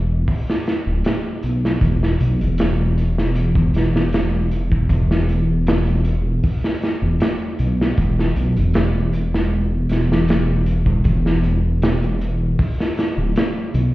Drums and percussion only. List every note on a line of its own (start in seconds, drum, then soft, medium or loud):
0.28 kick medium
0.28 open hi-hat medium
0.50 snare soft
0.66 snare soft
0.66 closed hi-hat medium
1.04 snare loud
1.04 closed hi-hat medium
1.43 closed hi-hat medium
1.65 snare soft
1.81 kick medium
1.81 closed hi-hat medium
2.03 snare soft
2.20 closed hi-hat medium
2.41 closed hi-hat soft
2.58 snare loud
2.58 closed hi-hat medium
2.98 closed hi-hat medium
3.18 snare soft
3.35 closed hi-hat medium
3.55 kick loud
3.74 snare soft
3.74 closed hi-hat medium
3.96 snare medium
4.12 snare loud
4.12 closed hi-hat medium
4.51 closed hi-hat medium
4.72 kick medium
4.89 kick loud
4.89 closed hi-hat medium
5.11 snare soft
5.29 closed hi-hat medium
5.67 snare loud
5.67 closed hi-hat medium
5.87 closed hi-hat soft
6.05 closed hi-hat medium
6.43 kick loud
6.43 open hi-hat medium
6.64 snare soft
6.82 snare soft
6.82 closed hi-hat medium
7.20 snare loud
7.20 closed hi-hat medium
7.59 closed hi-hat medium
7.81 snare medium
7.98 kick loud
7.98 closed hi-hat medium
8.19 snare soft
8.36 closed hi-hat medium
8.56 closed hi-hat soft
8.74 snare loud
8.74 closed hi-hat medium
9.13 closed hi-hat medium
9.34 snare soft
9.89 snare soft
9.89 closed hi-hat medium
10.12 snare soft
10.28 snare loud
10.28 closed hi-hat medium
10.66 closed hi-hat medium
10.86 kick medium
11.04 kick medium
11.04 closed hi-hat medium
11.26 snare soft
11.43 closed hi-hat medium
11.82 snare loud
11.82 closed hi-hat medium
12.03 closed hi-hat soft
12.21 closed hi-hat medium
12.59 kick loud
12.59 open hi-hat medium
12.80 snare soft
12.97 snare soft
12.97 closed hi-hat medium
13.36 snare loud
13.36 closed hi-hat medium
13.74 closed hi-hat medium